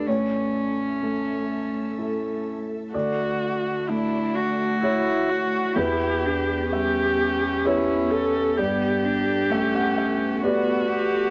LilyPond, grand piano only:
\new Staff \with { instrumentName = "Grand piano" } { \time 3/4 \key d \major \tempo 4 = 64 << { cis''2~ cis''8 r8 | d''2 cis''4 | b'4 e''4 cis''4 | d''4 e''16 fis''16 e''8 d''4 | } \\ { a,4 a4 <e' a'>4 | d,4 a4 <e' fis'>4 | e,4 g4 <g' b'>4 | g,4 a4 <g' b'>4 | } >> }